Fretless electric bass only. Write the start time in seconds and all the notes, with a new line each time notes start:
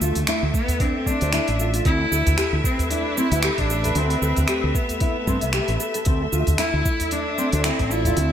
0.01 D2
0.16 D2
0.43 D2
1.22 D2
1.48 A1
1.85 D2
2.12 D2
2.27 D2
2.53 D2
3.32 D2
3.58 A1
3.95 D2
4.22 D2
4.37 D2
4.64 D2
5.27 G2
5.43 C2
5.68 A1
6.06 D2
6.33 D2
6.47 D2
6.74 D2
7.53 D2
7.79 A1
8.17 D2